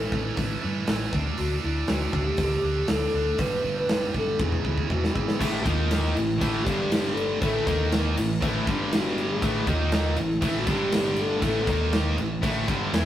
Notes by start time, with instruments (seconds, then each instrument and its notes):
Already playing: distorted electric guitar A2 E3 A3, alto flute A4
0.12 fingered electric bass A1, distorted electric guitar A2 E3 A3, kick
0.35 fingered electric bass A1, distorted electric guitar A2 E3 A3, kick, open hi-hat
0.61 fingered electric bass G2, distorted electric guitar A2 E3 A3
0.87 fingered electric bass A1, distorted electric guitar A2 E3 A3, snare, open hi-hat
1.12 fingered electric bass D2, distorted electric guitar D3 A3 D4, kick
1.37 fingered electric bass D2, distorted electric guitar D3 A3 D4, alto flute F#4, open hi-hat
1.62 fingered electric bass D2, distorted electric guitar D3 A3 D4, alto flute E4
1.88 fingered electric bass D2, distorted electric guitar D3 A3 D4, alto flute F#4, snare, open hi-hat
2.13 fingered electric bass D2, distorted electric guitar D3 A3 D4, alto flute G4, kick
2.37 fingered electric bass D2, distorted electric guitar D3 A3 D4, kick, open hi-hat
2.51 snare
2.63 fingered electric bass D2, distorted electric guitar D3 A3 D4
2.88 fingered electric bass D2, distorted electric guitar D3 A3 D4, alto flute A4, snare, open hi-hat
3.14 fingered electric bass D2, distorted electric guitar D3 A3 D4
3.38 fingered electric bass G1, distorted electric guitar G2 D3 G3, alto flute B4, kick, open hi-hat
3.62 fingered electric bass G1, distorted electric guitar G2 D3 G3
3.79 alto flute B4
3.89 fingered electric bass G1, distorted electric guitar G2 D3 G3, snare, open hi-hat
4.13 fingered electric bass G1, distorted electric guitar G2 D3 G3, kick
4.18 alto flute A4
4.39 fingered electric bass E1, distorted electric guitar E2 B2 E3, alto flute G#4, kick
4.52 kick
4.65 fingered electric bass D2, distorted electric guitar E2 B2 E3, kick
4.78 kick
4.89 fingered electric bass E1, distorted electric guitar E2 B2 E3, alto flute F#4, kick
5.04 snare
5.14 fingered electric bass G#1, distorted electric guitar E2 B2 E3, alto flute G#4, kick
5.28 snare
5.40 fingered electric bass A1, distorted electric guitar A2 E3 A3, kick, crash
5.62 distorted electric guitar D#3 A#3 D#4, alto flute F4, kick, crash
5.66 fingered electric bass D#2
5.91 snare, crash
6.12 fingered electric bass A1, alto flute E4
6.17 distorted electric guitar A2 E3, crash
6.30 snare
6.41 fingered electric bass A1, distorted electric guitar A2 E3 A3, kick, crash
6.64 fingered electric bass G1, distorted electric guitar G2 D3 G3, alto flute G4, kick, crash
6.92 snare, crash
7.13 alto flute A4
7.17 crash
7.42 fingered electric bass A1, distorted electric guitar A2 E3 A3, alto flute A4, kick, crash
7.67 fingered electric bass D#2, distorted electric guitar D#3 A#3 D#4, kick, snare, crash
7.92 snare, crash
8.16 fingered electric bass A1, distorted electric guitar A2 E3, crash
8.31 snare
8.41 fingered electric bass A1, distorted electric guitar A2 E3 A3, kick, crash
8.66 fingered electric bass G1, distorted electric guitar G2 D3 G3, kick, crash
8.93 alto flute F#4, snare, crash
9.18 alto flute G#4, crash
9.41 fingered electric bass A1, distorted electric guitar A2 E3 A3, kick, crash
9.67 fingered electric bass D#2, distorted electric guitar D#3 A#3 D#4, alto flute F4, kick, crash
9.92 snare, crash
10.16 fingered electric bass A1, distorted electric guitar A2 E3, alto flute E4, crash
10.30 snare
10.41 fingered electric bass A1, distorted electric guitar A2 E3 A3, kick, crash
10.59 alto flute F#4
10.66 fingered electric bass G1, distorted electric guitar G2 D3 G3, alto flute G4, kick, crash
10.92 snare, crash
11.16 crash
11.21 alto flute A4
11.42 fingered electric bass A1, distorted electric guitar A2 E3 A3, alto flute A4, kick, crash
11.67 fingered electric bass D#2, distorted electric guitar D#3 A#3 D#4, kick, snare, crash
11.93 snare, crash
12.17 fingered electric bass A1, distorted electric guitar A2 E3, crash
12.42 fingered electric bass A1, distorted electric guitar A2 E3 A3, kick, crash
12.67 fingered electric bass G1, distorted electric guitar G2 D3 G3, kick, crash
12.93 fingered electric bass E2, distorted electric guitar E3 B3 E4, snare, crash